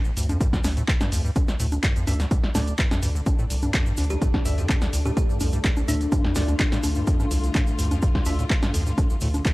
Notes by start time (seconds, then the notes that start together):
0.04 D1, shaker
0.17 D2 G2, open hi-hat, shaker
0.23 closed hi-hat
0.29 F2, closed hi-hat, high conga, shaker
0.41 kick, closed hi-hat, shaker
0.53 D2, kick, snare, shaker
0.64 C2 D2, snare, open hi-hat, high conga, shaker
0.77 A2, closed hi-hat, shaker
0.88 D1, kick, clap, shaker
1.01 G2, snare, closed hi-hat, high conga, shaker
1.12 D2 F2, open hi-hat, shaker
1.25 G2, shaker
1.36 D2, kick, closed hi-hat, high conga, shaker
1.48 C2, snare, shaker
1.60 D2 A2, open hi-hat, shaker
1.72 D1, closed hi-hat, high conga, shaker
1.83 G2, kick, clap, closed hi-hat, shaker
1.96 F2, closed hi-hat, shaker
2.07 D2 G2 A3 D4 E5, open hi-hat, high conga, shaker
2.14 closed hi-hat
2.20 D2, snare, closed hi-hat, shaker
2.31 D2 D3 A3 D4, kick, closed hi-hat, shaker
2.44 C2, snare
2.55 D2 A2 A3 D4 D5, snare, open hi-hat, high conga, shaker
2.67 D1, closed hi-hat, shaker
2.78 G2, kick, clap, shaker
2.91 F2, snare, closed hi-hat, high conga, shaker
3.03 D2 G2, open hi-hat, shaker
3.15 D2, shaker
3.26 C2, kick, closed hi-hat, high conga, shaker
3.39 A2, shaker
3.50 D1 C2, open hi-hat, shaker
3.62 G2, closed hi-hat, high conga, shaker
3.74 F2, kick, clap, closed hi-hat, shaker
3.86 G2, shaker
3.97 D2, open hi-hat, high conga, shaker
4.04 closed hi-hat
4.10 C2 G4, closed hi-hat, shaker
4.22 A2, kick, closed hi-hat, shaker
4.34 D1, kick, snare, high conga
4.45 D2 G2 A3 D4 E5, open hi-hat, shaker
4.58 F2, closed hi-hat, shaker
4.69 G2, kick, clap, high conga, shaker
4.82 D2, snare, closed hi-hat, shaker
4.93 C2 D2, open hi-hat, shaker
5.05 A2 G4, high conga, shaker
5.17 D1 G4, kick, closed hi-hat, shaker
5.29 G2, shaker
5.40 C2 F2, open hi-hat, high conga, shaker
5.52 G2, closed hi-hat, shaker
5.64 D2, kick, clap, closed hi-hat, shaker
5.77 C2, high conga, shaker
5.88 D2 A2 A3 D4 E5, open hi-hat, shaker
5.95 closed hi-hat
6.01 D1, closed hi-hat, shaker
6.12 G2 F4, kick, closed hi-hat, high conga, shaker
6.24 F2, snare
6.35 D2 G2 A3 D4 D5, snare, open hi-hat, shaker
6.48 D2, closed hi-hat, high conga, shaker
6.59 C2, kick, clap, shaker
6.72 A2, snare, closed hi-hat, shaker
6.83 D1 D2, open hi-hat, high conga, shaker
6.95 G2, shaker
7.07 F2, kick, closed hi-hat, shaker
7.20 G2, high conga, shaker
7.31 C2 D2, open hi-hat, shaker
7.43 C2, closed hi-hat, shaker
7.55 A2, kick, clap, closed hi-hat, high conga, shaker
7.67 D1, shaker
7.79 D2 G2, open hi-hat, shaker
7.85 closed hi-hat
7.91 F2, closed hi-hat, high conga, shaker
8.02 G2, kick, closed hi-hat, shaker
8.15 D2, kick, snare
8.25 C2 D2 A3 D4 E5, open hi-hat, high conga, shaker
8.39 A2, closed hi-hat, shaker
8.50 D1, kick, clap, shaker
8.62 G2, snare, closed hi-hat, high conga, shaker
8.74 D2 F2, open hi-hat, shaker
8.86 G2, shaker
8.98 D2, kick, closed hi-hat, high conga, shaker
9.10 C2, shaker
9.21 D2 A2, open hi-hat, shaker
9.34 D1, closed hi-hat, high conga, shaker
9.45 G2, kick, clap, closed hi-hat, shaker